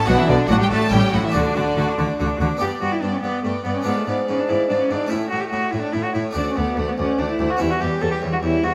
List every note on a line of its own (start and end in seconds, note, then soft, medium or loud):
0.06 0.16 B1 medium
0.06 0.27 B2 medium
0.06 0.17 B2 medium
0.06 0.12 F#3 medium
0.06 0.18 B3 medium
0.06 0.47 D4 medium
0.06 0.18 F#4 loud
0.06 0.19 F#5 loud
0.17 0.30 E3 medium
0.17 0.29 D4 medium
0.17 0.28 E4 medium
0.17 0.30 E5 loud
0.28 0.37 B1 medium
0.28 0.37 B2 medium
0.28 0.48 B2 medium
0.28 0.48 D3 medium
0.28 0.39 B3 medium
0.28 0.50 D4 loud
0.28 0.38 D5 loud
0.38 0.49 D4 medium
0.48 0.58 A1 medium
0.48 0.58 A2 medium
0.48 0.69 A2 medium
0.48 0.60 F#3 medium
0.48 0.90 D4 medium
0.48 0.60 F#4 medium
0.48 0.55 F#5 loud
0.58 0.70 G3 medium
0.58 0.70 D4 medium
0.58 0.71 G4 medium
0.63 0.67 G5 medium
0.70 0.79 A1 medium
0.70 0.90 A2 medium
0.70 0.80 A2 medium
0.70 0.91 A3 medium
0.70 0.81 F#4 medium
0.70 0.91 A4 medium
0.70 0.93 A5 loud
0.80 0.91 D4 medium
0.88 1.00 A1 medium
0.88 1.29 A3 medium
0.88 1.32 C#4 medium
0.88 1.01 E4 medium
0.88 1.33 E4 medium
0.88 1.13 G4 medium
0.92 1.00 A2 medium
0.92 1.11 A2 medium
0.92 1.13 G3 medium
0.92 1.13 G5 loud
1.01 1.12 C#4 medium
1.12 1.21 A1 medium
1.12 1.21 A2 medium
1.12 1.32 A2 medium
1.12 1.24 F#3 medium
1.12 1.23 E4 medium
1.12 1.24 F#4 medium
1.12 1.25 F#5 medium
1.23 1.36 E3 medium
1.23 1.34 C#4 medium
1.23 1.34 E4 medium
1.23 1.35 E5 medium
1.30 2.19 D3 medium
1.30 2.55 A3 medium
1.30 2.56 D4 medium
1.30 1.44 F#4 medium
1.30 2.57 F#4 medium
1.30 2.19 D5 medium
1.34 1.43 D2 medium
1.34 1.42 D3 medium
1.34 1.54 D3 medium
1.34 2.17 D4 medium
1.44 1.55 D4 medium
1.55 1.64 D2 medium
1.55 1.64 D3 medium
1.55 1.75 D3 medium
1.55 1.66 F#4 medium
1.67 1.77 D4 medium
1.77 1.85 D2 medium
1.77 1.85 D3 medium
1.77 1.97 D3 medium
1.77 1.87 F#4 medium
1.89 1.99 D4 medium
1.98 2.07 D2 medium
1.98 2.06 D3 medium
1.98 2.17 D3 medium
1.98 2.09 F#4 medium
2.08 2.19 D4 medium
2.18 2.28 D2 medium
2.18 2.26 D3 medium
2.18 2.39 D3 medium
2.18 2.28 F#4 medium
2.29 2.40 D4 medium
2.39 2.48 D2 medium
2.39 2.48 D3 medium
2.39 2.59 D3 medium
2.39 2.50 F#4 medium
2.49 2.61 D4 medium
2.57 3.80 B3 soft
2.57 2.79 B3 soft
2.57 3.81 D4 soft
2.57 3.82 G4 soft
2.57 2.80 D5 soft
2.61 2.69 G2 soft
2.61 2.80 G2 soft
2.61 2.70 G4 medium
2.61 2.81 G5 soft
2.80 2.90 G2 soft
2.80 3.01 G2 soft
2.80 3.01 B3 soft
2.80 2.93 F#4 medium
2.80 3.01 D5 soft
2.80 3.02 G5 soft
2.92 3.03 E4 medium
3.02 3.11 G2 soft
3.02 3.22 G2 soft
3.02 3.22 B3 soft
3.02 3.11 D4 medium
3.02 3.22 D5 soft
3.02 3.23 G5 soft
3.12 3.16 C#4 medium
3.20 3.32 G2 soft
3.20 3.43 G2 soft
3.20 3.42 B3 medium
3.20 3.44 B3 soft
3.20 3.43 D5 soft
3.25 3.45 G5 soft
3.43 3.52 G2 soft
3.43 3.63 G2 soft
3.43 3.51 A3 medium
3.43 3.64 B3 soft
3.43 3.64 D5 soft
3.43 3.65 G5 soft
3.64 3.84 G2 soft
3.64 3.73 G2 soft
3.64 3.74 B3 medium
3.64 3.85 B3 soft
3.64 3.85 D5 soft
3.64 3.86 G5 soft
3.74 3.84 C#4 medium
3.82 3.94 G#2 soft
3.82 5.05 B3 soft
3.82 3.96 B3 medium
3.82 4.05 B3 soft
3.82 5.06 D4 soft
3.82 5.07 F4 soft
3.86 4.05 G#2 soft
3.86 4.06 D5 soft
3.86 4.07 F5 soft
3.97 4.07 A3 medium
4.06 4.15 G#2 soft
4.06 4.26 G#2 soft
4.06 4.26 B3 soft
4.06 4.16 B3 medium
4.06 4.25 D5 soft
4.06 4.28 F5 soft
4.27 4.47 G#2 soft
4.27 4.37 G#2 soft
4.27 4.46 B3 soft
4.27 4.41 C#4 medium
4.27 4.46 D5 soft
4.27 4.49 F5 soft
4.40 4.51 D4 medium
4.47 4.68 G#2 soft
4.47 4.58 G#2 soft
4.47 4.68 B3 soft
4.47 4.68 E4 medium
4.47 4.67 D5 soft
4.47 4.70 F5 soft
4.69 4.78 G#2 soft
4.69 4.89 G#2 soft
4.69 4.89 B3 soft
4.69 4.73 D4 medium
4.69 4.88 D5 soft
4.69 4.90 F5 soft
4.80 4.92 C#4 medium
4.90 5.09 G#2 soft
4.90 4.99 G#2 soft
4.90 5.11 B3 soft
4.90 5.12 D4 medium
4.90 5.10 D5 soft
4.90 5.11 F5 soft
5.07 6.30 A3 soft
5.07 6.30 C#4 soft
5.07 6.31 E4 soft
5.07 5.29 E4 medium
5.07 5.30 C#5 soft
5.11 5.30 A2 soft
5.11 5.20 A2 medium
5.11 5.30 A3 soft
5.11 5.32 E5 soft
5.30 5.51 A2 soft
5.30 5.41 A2 soft
5.30 5.51 A3 soft
5.30 5.42 F#4 medium
5.30 5.51 C#5 soft
5.30 5.53 E5 soft
5.40 5.50 G4 medium
5.50 5.71 A2 soft
5.50 5.61 A2 medium
5.50 5.72 A3 soft
5.50 5.72 F#4 medium
5.50 5.73 C#5 soft
5.50 5.73 E5 soft
5.71 5.92 A2 soft
5.71 5.82 A2 medium
5.71 5.94 A3 soft
5.71 5.80 E4 medium
5.71 5.93 C#5 soft
5.71 5.93 E5 soft
5.81 5.94 D4 medium
5.93 6.13 A2 soft
5.93 6.03 A2 soft
5.93 6.14 A3 soft
5.93 6.05 E4 medium
5.93 6.13 C#5 soft
5.93 6.15 E5 soft
6.04 6.13 F#4 medium
6.14 6.34 A2 soft
6.14 6.24 A2 soft
6.14 6.35 A3 soft
6.14 6.22 E4 medium
6.14 6.35 C#5 soft
6.14 6.36 E5 soft
6.31 7.54 A3 soft
6.31 7.55 D4 soft
6.31 7.56 F#4 soft
6.36 6.55 D2 soft
6.36 6.44 D2 medium
6.36 6.56 A3 soft
6.36 6.47 D4 medium
6.36 6.54 D5 medium
6.36 6.56 F#5 soft
6.49 6.59 C#4 medium
6.55 6.75 D2 soft
6.55 6.65 D2 soft
6.55 6.77 A3 soft
6.55 6.80 B3 medium
6.55 6.76 D5 soft
6.55 6.76 F#5 soft
6.77 6.96 D2 soft
6.77 6.86 D2 medium
6.77 6.98 A3 soft
6.77 6.88 A3 medium
6.77 6.98 D5 soft
6.77 6.97 F#5 soft
6.88 6.92 B3 medium
6.98 7.17 D2 soft
6.98 7.07 D2 medium
6.98 7.18 A3 soft
6.98 7.21 C#4 medium
6.98 7.18 D5 soft
6.98 7.18 F#5 soft
7.19 7.37 D2 soft
7.19 7.27 D2 soft
7.19 7.40 A3 soft
7.19 7.29 D4 medium
7.19 7.38 D5 soft
7.19 7.38 F#5 soft
7.32 7.52 E4 medium
7.39 7.58 D2 soft
7.39 7.48 D2 soft
7.39 7.60 A3 soft
7.39 7.60 D5 soft
7.39 7.60 F#5 soft
7.50 7.61 F#4 medium
7.57 7.79 E2 soft
7.57 7.69 E2 medium
7.57 7.80 G3 soft
7.57 8.74 C#4 soft
7.57 8.74 E4 soft
7.57 7.72 E4 medium
7.57 7.80 C#5 medium
7.57 7.80 E5 medium
7.71 7.82 F#4 medium
7.80 8.00 E2 soft
7.80 7.90 E2 medium
7.80 8.00 G3 soft
7.80 8.03 G4 medium
7.80 7.99 C#5 medium
7.80 8.01 E5 soft
8.00 8.20 E2 soft
8.00 8.11 E2 medium
8.00 8.21 G3 medium
8.00 8.11 A4 medium
8.00 8.19 C#5 medium
8.00 8.22 E5 medium
8.12 8.20 G4 medium
8.21 8.41 E2 soft
8.21 8.31 E2 medium
8.21 8.42 G3 soft
8.21 8.41 C#5 soft
8.21 8.42 E5 soft
8.33 8.37 F#4 medium
8.42 8.62 E2 soft
8.42 8.51 E2 medium
8.42 8.62 G3 medium
8.42 8.65 E4 medium
8.42 8.62 C#5 medium
8.42 8.64 E5 medium
8.63 8.74 E2 soft
8.63 8.72 E2 medium
8.63 8.74 G3 soft
8.63 8.74 F#4 medium
8.63 8.74 C#5 medium
8.63 8.74 E5 medium